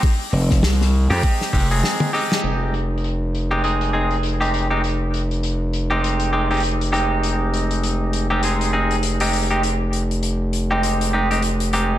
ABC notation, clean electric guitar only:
X:1
M:4/4
L:1/16
Q:"Swing 16ths" 1/4=100
K:Fm
V:1 name="Clean electric guitar"
z6 z [A,CEG]3 [A,CEG] [A,CEA]3 [A,CEG]2- | [A,CEG]2 z4 z [A,CEG] [A,CEA]2 [A,CEA] z2 [A,CEG]2 [A,CEG] | z6 z [A,CEG]3 [A,CEG] [A,CEG] z2 [A,CEG]2- | [A,CEG]6- [A,CEG] [A,CEG] [A,CEA]2 [A,CEA] z2 [A,CEG]2 [A,CEG] |
z6 z [A,CEG]3 [A,CEG] [A,CEG] z2 [A,CEG]2 |]